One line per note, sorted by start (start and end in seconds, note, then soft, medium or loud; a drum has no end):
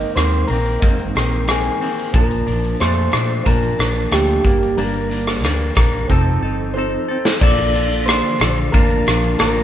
0.00 0.16 D#3 soft
0.00 0.58 G#3 medium
0.00 0.16 A#3 soft
0.00 0.16 C4 medium
0.00 0.58 C4 medium
0.00 0.58 D#4 medium
0.00 0.59 A#4 medium
0.00 0.15 D#5 medium
0.00 shaker soft
0.15 0.42 D#2 medium
0.15 0.49 G#2 medium
0.15 0.49 D#3 medium
0.15 0.50 A#3 medium
0.15 0.49 C4 medium
0.15 0.47 C5 medium
0.15 cross-stick medium
0.15 closed hi-hat medium
0.15 shaker medium
0.34 shaker soft
0.47 0.75 A#1 medium
0.47 0.82 C4 medium
0.47 1.50 A#4 medium
0.47 closed hi-hat medium
0.47 shaker medium
0.52 0.82 D#3 soft
0.52 0.82 A#3 medium
0.66 shaker soft
0.80 1.08 G#1 medium
0.80 1.15 G#2 medium
0.80 1.15 D#3 medium
0.80 1.89 G#3 medium
0.80 1.15 A#3 medium
0.80 1.90 C4 medium
0.80 1.90 D#4 medium
0.80 1.91 A#4 medium
0.80 kick medium
0.80 closed hi-hat medium
0.80 shaker medium
0.84 1.14 C4 medium
0.99 shaker soft
1.15 1.68 A#1 medium
1.15 1.48 D#3 soft
1.15 1.48 A#3 soft
1.15 1.48 C4 soft
1.15 cross-stick medium
1.15 closed hi-hat medium
1.15 shaker soft
1.32 shaker soft
1.48 1.81 G#2 soft
1.48 1.81 D#3 medium
1.48 1.81 A#3 medium
1.48 1.80 C4 medium
1.48 2.15 G#4 medium
1.48 cross-stick loud
1.48 closed hi-hat medium
1.48 shaker medium
1.63 shaker soft
1.81 2.15 D#3 medium
1.81 2.15 A#3 soft
1.81 2.14 C4 medium
1.81 closed hi-hat soft
1.81 shaker medium
1.99 shaker medium
2.13 2.40 A#1 loud
2.13 2.47 A#2 medium
2.13 3.22 F3 medium
2.13 2.47 F3 medium
2.13 3.22 A#3 medium
2.13 3.22 D4 medium
2.13 2.46 D4 medium
2.13 2.80 A#4 medium
2.13 3.23 A5 medium
2.13 kick loud
2.13 closed hi-hat medium
2.13 shaker medium
2.31 shaker soft
2.47 2.73 A#1 medium
2.47 2.80 F3 soft
2.47 2.80 D4 medium
2.47 closed hi-hat medium
2.47 shaker medium
2.64 shaker soft
2.80 3.07 F2 medium
2.80 3.13 A#2 medium
2.80 3.13 F3 medium
2.80 3.13 A3 medium
2.80 3.12 D4 medium
2.80 3.42 C5 medium
2.80 cross-stick medium
2.80 closed hi-hat medium
2.80 shaker medium
2.98 shaker soft
3.11 3.39 A#2 medium
3.11 3.46 A3 medium
3.11 3.46 D4 medium
3.11 cross-stick loud
3.11 closed hi-hat medium
3.11 shaker medium
3.16 3.46 F3 soft
3.29 shaker soft
3.44 3.79 A#2 medium
3.44 3.72 A#2 loud
3.44 4.43 F3 medium
3.44 3.79 F3 medium
3.44 4.43 A#3 medium
3.44 4.44 D4 medium
3.44 4.08 A#4 medium
3.44 4.44 A5 medium
3.44 kick medium
3.44 closed hi-hat medium
3.44 shaker medium
3.48 3.78 D4 medium
3.62 shaker soft
3.79 4.05 A#1 medium
3.79 4.11 F3 soft
3.79 4.12 D4 medium
3.79 cross-stick medium
3.79 closed hi-hat medium
3.79 shaker medium
3.95 shaker soft
4.11 4.38 D2 medium
4.11 4.44 A#2 medium
4.11 4.45 F3 medium
4.11 4.45 A3 medium
4.11 4.43 D4 medium
4.11 4.80 G4 medium
4.11 cross-stick loud
4.11 closed hi-hat medium
4.11 shaker medium
4.27 shaker soft
4.43 4.71 G1 medium
4.43 5.52 G3 medium
4.43 5.53 A#3 medium
4.43 4.77 A#3 medium
4.43 4.77 D4 medium
4.43 5.53 D4 medium
4.43 5.54 A#4 medium
4.43 kick medium
4.43 closed hi-hat medium
4.43 shaker soft
4.48 4.77 G3 soft
4.62 shaker medium
4.77 5.44 G1 loud
4.77 5.10 G2 medium
4.77 5.10 G3 medium
4.77 5.10 A#3 medium
4.77 5.09 D4 medium
4.77 5.76 A#4 medium
4.77 closed hi-hat medium
4.77 shaker medium
4.93 shaker soft
5.10 5.43 G3 soft
5.10 5.44 A#3 soft
5.10 5.43 D4 medium
5.10 closed hi-hat medium
5.10 shaker medium
5.27 cross-stick medium
5.27 shaker soft
5.43 5.70 D2 medium
5.43 5.76 G2 medium
5.43 5.77 G3 medium
5.43 5.76 A#3 medium
5.43 5.75 D4 medium
5.43 cross-stick medium
5.43 closed hi-hat medium
5.43 shaker medium
5.61 shaker soft
5.75 6.03 A#1 medium
5.75 6.09 G3 soft
5.75 6.10 A#3 soft
5.75 6.09 D4 medium
5.75 6.10 A#4 medium
5.75 kick loud
5.75 cross-stick loud
5.75 closed hi-hat medium
5.75 shaker medium
5.92 shaker soft
6.08 6.36 F1 loud
6.08 7.17 F3 medium
6.08 6.42 F3 medium
6.08 7.18 C4 medium
6.08 6.43 C4 medium
6.08 7.18 D#4 medium
6.08 6.43 D#4 medium
6.08 7.05 A4 medium
6.08 7.18 A4 medium
6.08 6.41 A4 medium
6.08 kick medium
6.42 6.95 G1 medium
6.42 6.76 C4 soft
6.42 6.76 D#4 soft
6.42 6.75 A4 soft
6.74 7.08 F3 soft
6.74 7.09 C4 soft
6.74 7.09 D#4 medium
6.74 7.42 C5 medium
6.78 7.07 A4 medium
7.08 7.42 C4 medium
7.08 7.42 D#4 soft
7.08 7.41 A4 medium
7.25 snare medium
7.41 8.20 A#1 loud
7.41 9.63 D3 medium
7.41 9.63 F3 medium
7.41 8.49 A#3 medium
7.41 7.74 A#3 medium
7.41 9.63 A#3 medium
7.41 8.50 D4 medium
7.41 7.75 D4 medium
7.41 9.63 F4 medium
7.41 8.50 F4 medium
7.41 7.74 F4 medium
7.41 8.50 A4 medium
7.41 7.73 A4 loud
7.41 8.05 D5 medium
7.41 8.51 D5 medium
7.41 kick loud
7.41 crash medium
7.41 tambourine soft
7.58 shaker medium
7.74 8.08 D4 soft
7.74 8.08 F4 soft
7.74 8.07 A4 medium
7.74 closed hi-hat medium
7.74 tambourine soft
7.74 shaker medium
7.92 shaker medium
8.06 8.40 A#3 medium
8.06 8.41 D4 medium
8.06 8.41 F4 medium
8.06 8.72 C5 medium
8.06 cross-stick loud
8.06 closed hi-hat medium
8.06 tambourine medium
8.06 shaker medium
8.10 8.39 A4 medium
8.25 shaker soft
8.39 8.67 A#1 medium
8.39 8.73 D4 soft
8.39 8.73 F4 medium
8.39 8.73 A4 medium
8.39 cross-stick loud
8.39 closed hi-hat medium
8.39 tambourine soft
8.39 shaker medium
8.57 shaker medium
8.72 9.00 A1 medium
8.72 9.63 A#3 medium
8.72 9.06 A#3 medium
8.72 9.63 D4 medium
8.72 9.06 D4 medium
8.72 9.63 F4 medium
8.72 9.07 F4 medium
8.72 9.38 A#4 loud
8.72 9.63 F5 medium
8.72 9.63 A5 medium
8.72 kick loud
8.72 closed hi-hat medium
8.72 tambourine soft
8.72 shaker medium
8.90 shaker medium
9.07 9.33 A#1 medium
9.07 9.39 D4 medium
9.07 9.40 F4 medium
9.07 cross-stick medium
9.07 closed hi-hat medium
9.07 tambourine soft
9.07 shaker medium
9.23 shaker medium
9.39 9.63 A1 medium
9.39 9.63 A#3 medium
9.39 9.63 D4 medium
9.39 9.63 F4 medium
9.39 9.63 A#4 loud
9.39 cross-stick loud
9.39 closed hi-hat medium
9.39 tambourine medium
9.39 shaker medium
9.54 shaker soft